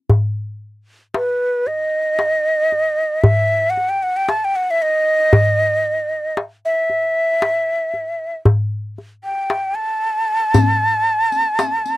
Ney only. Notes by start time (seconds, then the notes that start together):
1.16 B4
1.67 D#5
3.22 E5
3.70 F#5
3.89 G5
4.03 F#5
4.17 G5
4.29 A5
4.44 G5
4.56 F#5
4.71 E5
4.82 D#5
6.65 E5
9.24 G5
9.75 A5